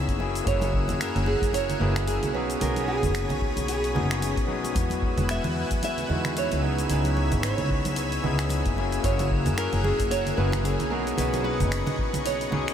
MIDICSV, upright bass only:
0, 0, Header, 1, 2, 480
1, 0, Start_track
1, 0, Tempo, 535714
1, 421, Time_signature, 4, 2, 24, 8
1, 11413, End_track
2, 0, Start_track
2, 0, Title_t, "Upright bass"
2, 0, Program_c, 0, 32
2, 74, Note_on_c, 0, 30, 76
2, 384, Note_off_c, 0, 30, 0
2, 417, Note_on_c, 0, 30, 96
2, 796, Note_on_c, 0, 42, 92
2, 809, Note_off_c, 0, 30, 0
2, 978, Note_off_c, 0, 42, 0
2, 1036, Note_on_c, 0, 30, 98
2, 1218, Note_off_c, 0, 30, 0
2, 1272, Note_on_c, 0, 30, 82
2, 1583, Note_off_c, 0, 30, 0
2, 1622, Note_on_c, 0, 30, 93
2, 1951, Note_off_c, 0, 30, 0
2, 1998, Note_on_c, 0, 35, 79
2, 2305, Note_off_c, 0, 35, 0
2, 2342, Note_on_c, 0, 35, 93
2, 2715, Note_on_c, 0, 30, 88
2, 2728, Note_off_c, 0, 35, 0
2, 2897, Note_off_c, 0, 30, 0
2, 2957, Note_on_c, 0, 35, 95
2, 3139, Note_off_c, 0, 35, 0
2, 3198, Note_on_c, 0, 35, 85
2, 3539, Note_on_c, 0, 30, 89
2, 3552, Note_off_c, 0, 35, 0
2, 3870, Note_off_c, 0, 30, 0
2, 3917, Note_on_c, 0, 35, 79
2, 4226, Note_off_c, 0, 35, 0
2, 4261, Note_on_c, 0, 40, 96
2, 4635, Note_on_c, 0, 28, 95
2, 4649, Note_off_c, 0, 40, 0
2, 4818, Note_off_c, 0, 28, 0
2, 4878, Note_on_c, 0, 40, 103
2, 5059, Note_off_c, 0, 40, 0
2, 5117, Note_on_c, 0, 40, 83
2, 5425, Note_off_c, 0, 40, 0
2, 5463, Note_on_c, 0, 40, 99
2, 5792, Note_off_c, 0, 40, 0
2, 5842, Note_on_c, 0, 37, 78
2, 6148, Note_off_c, 0, 37, 0
2, 6189, Note_on_c, 0, 37, 94
2, 6559, Note_on_c, 0, 32, 95
2, 6573, Note_off_c, 0, 37, 0
2, 6740, Note_off_c, 0, 32, 0
2, 6802, Note_on_c, 0, 37, 100
2, 6981, Note_off_c, 0, 37, 0
2, 7042, Note_on_c, 0, 37, 81
2, 7348, Note_off_c, 0, 37, 0
2, 7382, Note_on_c, 0, 37, 97
2, 7711, Note_off_c, 0, 37, 0
2, 7758, Note_on_c, 0, 30, 81
2, 8066, Note_off_c, 0, 30, 0
2, 8101, Note_on_c, 0, 30, 92
2, 8478, Note_on_c, 0, 42, 99
2, 8492, Note_off_c, 0, 30, 0
2, 8659, Note_off_c, 0, 42, 0
2, 8717, Note_on_c, 0, 30, 98
2, 8899, Note_off_c, 0, 30, 0
2, 8957, Note_on_c, 0, 30, 82
2, 9265, Note_off_c, 0, 30, 0
2, 9299, Note_on_c, 0, 30, 99
2, 9630, Note_off_c, 0, 30, 0
2, 9677, Note_on_c, 0, 35, 75
2, 9985, Note_off_c, 0, 35, 0
2, 10020, Note_on_c, 0, 35, 93
2, 10396, Note_on_c, 0, 30, 93
2, 10409, Note_off_c, 0, 35, 0
2, 10578, Note_off_c, 0, 30, 0
2, 10637, Note_on_c, 0, 35, 96
2, 10818, Note_off_c, 0, 35, 0
2, 10877, Note_on_c, 0, 35, 84
2, 11185, Note_off_c, 0, 35, 0
2, 11223, Note_on_c, 0, 35, 94
2, 11329, Note_off_c, 0, 35, 0
2, 11413, End_track
0, 0, End_of_file